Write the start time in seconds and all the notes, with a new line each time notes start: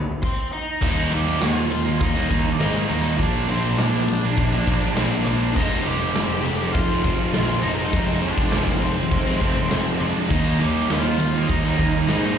Already playing: D2 A#3 D#4 G#4
0.22 C4 C5, kick, crash
0.52 D#4 D#5
0.81 D#2 D#3 G3 A#3 D#4 D#5, kick, crash
0.96 G3 A#3 D#4
1.11 D#2 D#3 G3 A#3 D#4 G4 G5, ride
1.26 G3 A#3 D#4
1.41 D#2 D#3 G3 A#3 D#4 F4 F5, snare, ride
1.55 G3 A#3 D#4
1.70 D#2 D#3 G3 A#3 D#4, muted distorted electric guitar stroke, ride
1.85 G3 A#3 D#4, muted distorted electric guitar stroke
1.99 D#2 D#4 D#5, kick, ride
2.15 G3 A#3 D#4
2.29 D#2 D#3 G3 A#3 D#4, kick, ride
2.45 muted distorted electric guitar stroke
2.53 D5
2.59 G#2 D#3 G3 A#3 D#4 D#5, snare, ride
2.73 G3 A#3 D#4, snare
2.88 D#2 D#3 G3 A#3 D#4, snare, ride
3.03 G3 A#3 D#4
3.18 A#1 A#2 F3 A#3 D4 D5, kick, ride
3.33 F3 A#3 D4
3.48 A#1 A#2 F3 A#3 C4 D4 C5, ride
3.63 F3 A#3 D4
3.77 A#1 A#2 F3 A#3 D4 D5, snare, ride
3.93 F3 A#3 D4
4.07 A#1 A#2 F3 A#3 D4, muted distorted electric guitar stroke, ride
4.23 F3 A#3 D4, muted distorted electric guitar stroke
4.37 A#1, kick, ride
4.52 F3 A#3 D4
4.67 A#1 A#2 F3 A#3 D4, kick, ride
4.83 muted distorted electric guitar stroke, snare
4.95 A#1 A#2 F3 A#3 C4 D4 C5, snare, ride
5.11 F3 A#3 D4
5.24 A#1 A#2 F3 A#3 D4 D5, ride
5.40 F3 A#3 D4
5.53 F1 F2 C3 F3 G#3 D#4 D#5, kick, crash
5.58 C4
5.70 F3 G#3 C4
5.83 F1 C3 F3 G#3 G4 G5, ride
5.87 C4
6.00 F3 G#3 C4
6.15 F1 F2 C3 F3 G#3 C4, snare, ride
6.28 F3 G#3 C4
6.43 F1 C3 F3 G#3 C4, muted distorted electric guitar stroke, ride
6.58 F3 G#3 C4, muted distorted electric guitar stroke
6.72 F1 F4 F5, kick, ride
6.89 F3 G#3 C4
7.03 F1 C3 F3 G#3 C4, kick, ride
7.20 muted distorted electric guitar stroke
7.33 A#1 F2 C3 F3 G#3 C4, snare, ride
7.48 F3 G#3 C4, snare
7.61 F1 C3 F3 G#3 D#4 D#5, ride
7.65 C4
7.78 F3 G#3 C4
7.92 F1 F2 C3 F3 G#3 C4, kick, ride
8.07 F3 G#3 C4
8.22 F1 C3 F3 G#3 C4 D4 D5, ride
8.37 F3 G#3 C4, kick
8.51 F1 F2 C3 F3 G#3 C4, snare, ride
8.66 F3 G#3 C4 C5, kick
8.81 F1 C3 F3 G#3 C4 C5, muted distorted electric guitar stroke, ride
8.96 F3 G#3 C4, muted distorted electric guitar stroke
9.11 F1, kick, ride
9.26 F3 G#3 C4
9.40 F1 C3 F3 G#3 C4 C5, kick, ride
9.56 muted distorted electric guitar stroke
9.70 F1 F2 C3 F3 G#3 C4 C5, snare, ride
9.85 F3 G#3 C4, snare
9.99 F2 C3 F3 G#3 C4 D4 D5, ride
10.15 F3 G#3 C4
10.29 D#2 D#3 G3 A#3 D#4 D#5, kick, crash
10.45 G3 A#3 D#4
10.59 D#2 D#3 G3 A#3 D#4 G4 G5, ride
10.75 G3 A#3 D#4
10.89 D#2 D#3 G3 A#3 D#4 F4 F5, snare, ride
11.04 G3 A#3 D#4
11.18 D#2 D#3 G3 A#3 D#4, muted distorted electric guitar stroke, ride
11.35 G3 A#3 D#4, muted distorted electric guitar stroke
11.48 D#2 D#4 D#5, kick, ride
11.65 G3 A#3 D#4
11.79 D#2 D#3 G3 A#3 D#4, kick, ride
11.93 muted distorted electric guitar stroke
12.08 G#2 D#3 G3 A#3 D#4 D#5, snare, ride
12.23 G3 A#3 D#4, snare